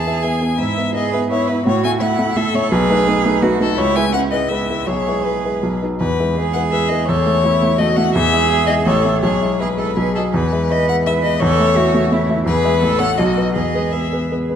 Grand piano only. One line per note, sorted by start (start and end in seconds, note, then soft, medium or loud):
0.00 0.07 B3 soft
0.00 0.07 E4 soft
0.00 0.08 E5 medium
0.07 0.22 B3 soft
0.07 0.23 E4 medium
0.07 0.23 E5 medium
0.24 0.40 B3 medium
0.24 0.40 E4 soft
0.24 0.40 E5 medium
0.41 0.58 B3 soft
0.41 0.58 E4 soft
0.59 0.77 G#2 medium
0.78 0.93 B3 medium
0.78 0.94 E4 medium
0.78 0.94 E5 medium
0.95 1.11 B3 medium
0.95 1.11 E4 medium
0.95 1.12 E5 medium
1.14 1.29 B3 medium
1.14 1.30 E4 medium
1.14 1.30 E5 medium
1.31 1.47 B3 medium
1.31 1.47 E4 medium
1.31 1.47 E5 medium
1.49 1.64 B3 medium
1.49 1.65 E4 medium
1.49 1.65 E5 medium
1.66 1.83 A2 medium
1.85 2.00 A3 medium
1.85 2.00 E4 medium
1.85 2.00 E5 medium
2.01 2.17 A3 medium
2.01 2.17 E4 medium
2.01 2.18 E5 medium
2.19 2.35 A3 medium
2.19 2.35 E4 medium
2.19 2.35 E5 medium
2.36 2.52 A3 medium
2.36 2.53 E4 medium
2.36 2.53 E5 medium
2.55 2.70 A3 medium
2.55 2.70 E4 medium
2.55 2.71 E5 medium
2.72 2.89 B1 loud
2.90 3.06 A3 medium
2.90 3.06 D#4 medium
2.90 3.06 B4 medium
3.08 3.23 A3 medium
3.08 3.23 D#4 medium
3.08 3.24 B4 medium
3.25 3.41 A3 medium
3.25 3.41 D#4 medium
3.25 3.42 B4 medium
3.43 3.58 A3 medium
3.43 3.59 D#4 medium
3.43 3.59 B4 medium
3.60 3.76 A3 medium
3.60 3.76 D#4 medium
3.60 3.77 B4 medium
3.78 3.95 C#2 medium
3.96 4.12 G#3 medium
3.96 4.12 E4 medium
3.96 4.12 B4 medium
4.13 4.30 G#3 medium
4.13 4.30 E4 medium
4.13 4.30 B4 medium
4.32 4.49 G#3 medium
4.32 4.49 E4 medium
4.32 4.49 B4 medium
4.51 4.67 G#3 medium
4.51 4.67 E4 medium
4.51 4.67 B4 medium
4.70 4.86 G#3 medium
4.70 4.86 E4 soft
4.70 4.87 B4 medium
4.88 5.06 B1 medium
5.07 5.24 G#3 medium
5.07 5.24 E4 soft
5.07 5.24 B4 soft
5.26 5.43 G#3 soft
5.26 5.43 E4 soft
5.26 5.43 B4 soft
5.45 5.61 G#3 soft
5.45 5.61 E4 soft
5.45 5.62 B4 medium
5.63 5.81 B1 medium
5.82 5.99 F#3 soft
5.82 5.99 D#4 soft
5.82 5.99 B4 soft
6.01 6.18 E2 medium
6.20 6.36 G#3 medium
6.20 6.36 E4 medium
6.20 6.36 B4 medium
6.38 6.53 G#3 medium
6.38 6.53 E4 medium
6.38 6.54 B4 medium
6.55 6.70 G#3 medium
6.55 6.70 E4 medium
6.55 6.71 B4 medium
6.72 6.88 G#3 medium
6.72 6.88 E4 medium
6.72 6.89 B4 medium
6.91 7.07 G#3 medium
6.91 7.07 E4 medium
6.91 7.07 B4 medium
7.09 7.26 E2 medium
7.27 7.43 A3 medium
7.27 7.43 E4 medium
7.27 7.43 E5 medium
7.45 7.60 A3 medium
7.45 7.61 E4 medium
7.45 7.61 E5 medium
7.62 7.78 A3 medium
7.62 7.78 E4 medium
7.62 7.79 E5 medium
7.80 7.96 A3 medium
7.80 7.96 E4 medium
7.80 7.96 E5 medium
7.97 8.13 A3 medium
7.97 8.13 E4 medium
7.97 8.14 E5 medium
8.15 8.32 E2 medium
8.33 8.48 G#3 medium
8.33 8.49 E4 medium
8.33 8.49 E5 medium
8.50 8.66 G#3 medium
8.50 8.67 E4 medium
8.50 8.67 E5 medium
8.68 8.85 G#3 medium
8.68 8.85 E4 medium
8.68 8.85 E5 medium
8.86 9.04 A1 medium
9.05 9.21 A3 medium
9.05 9.22 E4 soft
9.05 9.22 E5 medium
9.23 9.41 B1 medium
9.41 9.58 G#3 medium
9.41 9.58 E4 medium
9.41 9.58 E5 medium
9.60 9.76 G#3 soft
9.60 9.77 E4 soft
9.60 9.77 E5 medium
9.78 9.95 G#3 medium
9.78 9.95 E4 medium
9.78 9.95 E5 medium
9.97 10.15 B1 medium
10.16 10.32 F#3 soft
10.16 10.33 F#4 medium
10.16 10.33 D#5 medium
10.34 10.52 E2 medium
10.52 10.69 G#3 medium
10.52 10.69 E4 medium
10.52 10.69 E5 medium
10.70 10.86 G#3 medium
10.70 10.87 E4 medium
10.70 10.87 E5 medium
10.88 11.04 G#3 medium
10.88 11.04 E4 medium
10.88 11.05 E5 medium
11.06 11.22 G#3 medium
11.06 11.23 E4 medium
11.06 11.23 E5 medium
11.24 11.40 G#3 medium
11.24 11.40 E4 medium
11.24 11.41 E5 medium
11.42 11.59 E2 loud
11.60 11.75 A3 medium
11.60 11.76 E4 medium
11.60 11.76 E5 medium
11.77 11.93 A3 medium
11.77 11.93 E4 medium
11.77 11.93 E5 medium
11.94 12.10 A3 medium
11.94 12.10 E4 medium
11.94 12.11 E5 medium
12.12 12.28 A3 medium
12.12 12.28 E4 medium
12.12 12.28 E5 medium
12.29 12.45 A3 medium
12.29 12.46 E4 medium
12.29 12.46 E5 medium
12.46 12.64 E2 medium
12.65 12.81 G#3 medium
12.65 12.81 E4 medium
12.65 12.81 E5 medium
12.83 13.00 A1 medium
13.00 13.16 A3 medium
13.00 13.17 E4 medium
13.00 13.17 C#5 medium
13.19 13.36 B1 medium
13.37 13.54 F#3 soft
13.37 13.54 B3 medium
13.37 13.54 B4 medium
13.56 13.74 E2 medium
13.74 13.91 G#3 soft
13.74 13.91 B3 medium
13.74 13.91 B4 medium
13.92 14.09 G#3 soft
13.92 14.10 B3 soft
13.92 14.10 B4 soft
14.13 14.29 G#3 medium
14.13 14.29 B3 medium
14.13 14.29 B4 medium
14.32 14.48 G#3 soft
14.32 14.48 B3 soft
14.32 14.48 B4 medium
14.49 14.56 G#3 soft
14.49 14.56 B3 soft
14.49 14.56 B4 medium